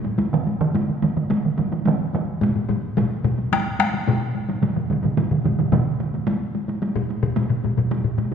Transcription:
0.05 taiko high medium
0.18 taiko high medium
0.33 taiko mid loud
0.47 taiko high medium
0.61 taiko mid loud
0.75 taiko mid medium
0.75 taiko high medium
0.89 taiko mid medium
1.02 taiko mid medium
1.02 taiko high medium
1.17 taiko mid medium
1.17 taiko high soft
1.30 taiko mid medium
1.30 taiko high medium
1.45 taiko mid medium
1.58 taiko mid medium
1.58 taiko high medium
1.72 taiko mid medium
1.72 taiko high medium
1.86 taiko mid loud
1.86 taiko high medium
2.14 taiko mid loud
2.14 taiko high medium
2.41 taiko low-mid medium
2.41 taiko high medium
2.56 taiko low-mid medium
2.69 taiko low-mid medium
2.69 taiko high medium
2.97 taiko low-mid loud
2.97 taiko high medium
3.24 taiko low-mid medium
3.24 taiko high medium
3.39 taiko high soft
3.52 taiko rim medium
3.52 taiko high medium
3.80 taiko rim medium
3.80 taiko high medium
3.94 taiko high medium
4.08 taiko low-mid loud
4.08 taiko high medium
4.35 taiko high medium
4.49 taiko high medium
4.62 taiko low-mid medium
4.62 taiko mid medium
4.62 taiko high medium
4.76 taiko low-mid medium
4.76 taiko mid medium
4.90 taiko low-mid medium
4.90 taiko mid medium
4.90 taiko high medium
5.04 taiko low-mid medium
5.04 taiko mid medium
5.04 taiko high medium
5.17 taiko low-mid medium
5.17 taiko mid medium
5.17 taiko high medium
5.31 taiko low-mid medium
5.31 taiko mid medium
5.45 taiko low-mid medium
5.45 taiko mid medium
5.45 taiko high medium
5.59 taiko low-mid medium
5.59 taiko mid medium
5.59 taiko high soft
5.72 taiko low-mid medium
5.72 taiko mid loud
5.72 taiko high medium
6.00 taiko high medium
6.14 taiko high medium
6.28 taiko high medium
6.55 taiko high medium
6.68 taiko high medium
6.82 taiko high medium
6.96 taiko low-mid medium
7.09 taiko high medium
7.23 taiko low-mid medium
7.37 taiko low-mid medium
7.37 taiko high medium
7.50 taiko low-mid medium
7.64 taiko low-mid medium
7.64 taiko high medium
7.77 taiko low-mid medium
7.77 taiko high soft
7.91 taiko low-mid medium
7.91 taiko high medium
8.04 taiko low-mid medium
8.18 taiko low-mid medium
8.18 taiko high medium
8.32 taiko low-mid medium
8.32 taiko high medium

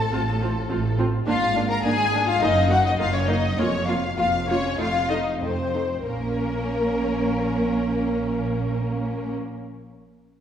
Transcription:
0.00 0.94 A4 medium
0.00 0.94 A5 medium
0.12 0.62 A1 medium
0.12 0.63 A2 medium
0.12 0.20 C4 medium
0.12 0.20 F4 medium
0.41 0.49 C4 medium
0.41 0.49 F4 medium
0.69 1.20 A1 medium
0.69 1.20 A2 medium
0.69 0.77 C4 medium
0.69 0.78 F4 medium
0.98 1.06 C4 medium
0.98 1.06 F4 medium
1.26 1.77 G#1 medium
1.26 1.77 G#2 medium
1.26 1.35 A#3 medium
1.26 1.35 D4 medium
1.26 1.66 F4 medium
1.26 1.66 F5 medium
1.55 1.63 A#3 medium
1.55 1.63 D4 medium
1.69 1.83 A#4 medium
1.69 1.83 A#5 medium
1.84 2.34 G#1 medium
1.84 2.34 G#2 medium
1.84 1.92 A#3 medium
1.84 1.92 D4 medium
1.84 2.26 G#4 medium
1.84 2.26 G#5 loud
2.13 2.21 A#3 medium
2.13 2.21 D4 medium
2.27 2.41 F4 medium
2.27 2.41 F5 medium
2.41 2.91 F#1 medium
2.41 2.92 F#2 medium
2.41 2.49 A#3 medium
2.41 2.49 D#4 medium
2.41 2.69 D#4 medium
2.41 2.70 D#5 medium
2.69 2.77 A#3 medium
2.69 2.77 D#4 medium
2.69 2.84 F#4 medium
2.69 2.84 F#5 medium
2.83 2.98 D#4 medium
2.83 2.91 D#5 medium
2.98 3.51 F#1 medium
2.98 3.51 F#2 medium
2.98 3.06 A#3 medium
2.98 3.07 D#4 medium
2.98 3.13 F4 medium
2.98 3.13 F5 loud
3.13 3.27 C#4 medium
3.13 3.29 C#5 medium
3.27 3.35 A#3 medium
3.27 3.35 D#4 medium
3.27 3.57 D#4 medium
3.27 3.58 D#5 medium
3.57 4.11 F1 medium
3.57 4.11 F2 medium
3.57 3.66 A#3 medium
3.57 3.65 C#4 medium
3.57 3.66 F4 medium
3.57 3.87 C#5 medium
3.87 3.96 A#3 medium
3.87 3.96 F4 medium
3.87 3.96 F4 soft
3.87 4.17 F5 medium
4.17 4.72 F1 medium
4.17 4.72 F2 medium
4.17 4.26 A#3 medium
4.17 4.25 F4 medium
4.17 4.26 F4 medium
4.17 4.48 F5 medium
4.47 4.57 A#3 soft
4.47 4.77 C#4 medium
4.47 4.57 F4 medium
4.47 4.78 C#5 medium
4.78 5.34 F1 medium
4.78 5.34 F2 medium
4.78 4.86 A3 medium
4.78 4.86 D#4 medium
4.78 5.09 F4 medium
4.78 5.09 F5 medium
5.09 5.17 A3 soft
5.09 5.17 D#4 soft
5.09 5.42 D#4 medium
5.09 5.17 D#5 medium
5.39 5.99 F1 medium
5.39 5.99 F2 medium
5.39 5.50 A3 soft
5.39 6.05 C4 medium
5.39 5.50 D#4 soft
5.39 6.04 C5 medium
5.74 5.82 A3 soft
5.74 5.82 D#4 soft
6.06 9.32 A#1 medium
6.06 9.32 A#2 soft
6.06 9.32 A#3 medium
6.06 9.33 A#3 medium
6.06 9.32 C#4 medium
6.06 9.32 A#4 medium

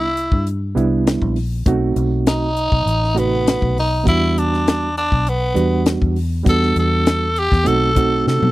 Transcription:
0.00 0.27 C2 loud
0.00 0.46 E4 loud
0.17 closed hi-hat medium
0.32 0.73 G2 medium
0.32 kick medium
0.47 closed hi-hat medium
0.75 1.18 C2 medium
0.75 1.37 G3 medium
0.75 1.37 B3 medium
0.75 1.37 D4 medium
0.75 1.38 E4 medium
0.75 closed hi-hat medium
1.07 snare loud
1.07 closed hi-hat medium
1.22 1.63 A#1 medium
1.22 kick medium
1.36 open hi-hat medium
1.66 1.94 B1 medium
1.66 2.48 A3 medium
1.66 2.48 C4 medium
1.66 2.49 D#4 medium
1.66 2.49 F#4 medium
1.66 kick loud
1.66 closed hi-hat medium
1.96 2.67 B1 loud
1.96 closed hi-hat medium
2.27 3.20 D#4 loud
2.27 snare loud
2.27 closed hi-hat medium
2.57 closed hi-hat medium
2.72 2.85 B1 medium
2.72 kick medium
2.86 3.57 A1 medium
2.86 closed hi-hat medium
3.04 snare soft
3.14 3.77 C3 medium
3.14 3.77 A3 medium
3.14 3.75 B3 medium
3.14 3.77 D#4 medium
3.14 3.77 F#4 medium
3.14 closed hi-hat medium
3.47 snare loud
3.47 closed hi-hat medium
3.62 4.03 B1 medium
3.62 kick medium
3.78 4.07 D#4 medium
3.78 open hi-hat medium
4.04 5.08 E2 loud
4.04 4.87 G3 medium
4.04 4.87 B3 medium
4.04 4.88 D4 medium
4.04 4.88 F#4 medium
4.04 kick loud
4.08 4.40 E4 loud
4.08 closed hi-hat medium
4.38 4.95 D4 medium
4.38 closed hi-hat medium
4.54 snare soft
4.68 snare loud
4.68 closed hi-hat medium
4.97 5.30 D4 loud
4.97 closed hi-hat medium
5.12 5.53 B1 medium
5.12 kick medium
5.27 5.86 B3 loud
5.27 closed hi-hat medium
5.54 5.98 E2 medium
5.54 6.17 G3 medium
5.54 6.17 B3 medium
5.54 6.17 D4 medium
5.54 6.18 F#4 medium
5.54 closed hi-hat medium
5.86 snare loud
5.86 closed hi-hat medium
6.02 6.43 E2 loud
6.02 kick medium
6.16 open hi-hat medium
6.44 6.74 E2 medium
6.44 7.27 G3 medium
6.44 7.27 B3 medium
6.44 7.27 D4 medium
6.44 7.28 F#4 medium
6.44 kick loud
6.44 closed hi-hat medium
6.49 6.77 A4 loud
6.63 snare soft
6.76 7.48 E2 loud
6.76 7.40 A4 medium
6.76 closed hi-hat medium
7.06 snare loud
7.06 closed hi-hat medium
7.36 7.69 G4 loud
7.36 closed hi-hat medium
7.52 7.65 E2 medium
7.52 kick medium
7.52 snare soft
7.64 8.23 B1 loud
7.64 7.89 A3 medium
7.64 7.90 C4 medium
7.64 7.90 D#4 medium
7.64 7.91 F#4 medium
7.64 8.25 A4 loud
7.64 closed hi-hat medium
7.95 8.52 A3 medium
7.95 8.52 C4 medium
7.95 8.52 D#4 medium
7.95 8.52 F#4 medium
7.95 kick medium
7.95 closed hi-hat medium
8.27 8.41 C3 medium
8.27 8.52 A4 loud
8.27 snare medium
8.42 8.52 B2 medium
8.42 high tom medium

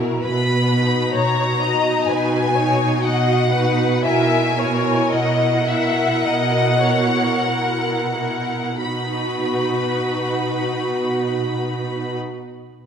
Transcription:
0.00 0.13 B2 soft
0.00 0.23 E4 soft
0.00 0.23 F#4 soft
0.00 0.25 A#4 soft
0.24 1.05 B2 medium
0.24 1.15 B4 medium
0.24 1.11 B5 medium
0.69 1.59 D#4 soft
0.69 1.59 F#4 soft
1.14 1.97 B2 soft
1.14 1.60 C#5 medium
1.14 2.09 A#5 medium
1.61 2.54 D#4 soft
1.61 2.54 F#4 soft
1.61 2.08 D#5 medium
2.08 2.93 B2 medium
2.08 2.57 B4 medium
2.08 3.04 G#5 medium
2.56 3.52 D#4 soft
2.56 3.52 F#4 soft
2.56 3.04 C#5 medium
3.05 3.93 B2 medium
3.05 3.53 D#5 medium
3.05 4.04 F#5 medium
3.53 4.03 D#4 soft
3.53 4.03 F#4 soft
3.53 4.03 B4 medium
4.04 4.98 B2 medium
4.04 4.55 E4 soft
4.04 4.55 A#4 soft
4.04 4.56 E5 medium
4.04 5.09 G#5 medium
4.56 5.63 E4 soft
4.56 5.63 A#4 soft
4.56 5.11 C#5 medium
5.11 6.10 B2 medium
5.11 5.66 D#5 medium
5.11 8.84 F#5 medium
5.66 6.81 E4 soft
5.66 6.81 A#4 soft
5.66 6.23 E5 medium
6.23 7.32 B2 medium
6.23 6.83 D#5 medium
6.82 8.13 E4 soft
6.82 8.13 A#4 soft
6.82 7.47 C#5 soft
7.47 8.68 B2 soft
7.47 8.15 A#4 soft
8.15 8.82 E4 soft
8.15 8.82 A#4 soft
8.83 12.16 B2 soft
8.83 12.16 D#4 soft
8.83 12.16 F#4 soft
8.83 12.16 B4 soft
8.83 12.15 B5 soft

